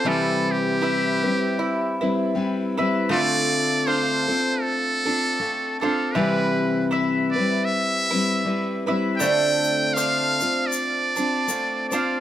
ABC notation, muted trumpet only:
X:1
M:4/4
L:1/8
Q:"Swing" 1/4=79
K:C
V:1 name="Muted trumpet"
A G4 z3 | d2 c2 A3 A | B2 z d e3 z | g2 f2 d3 d |]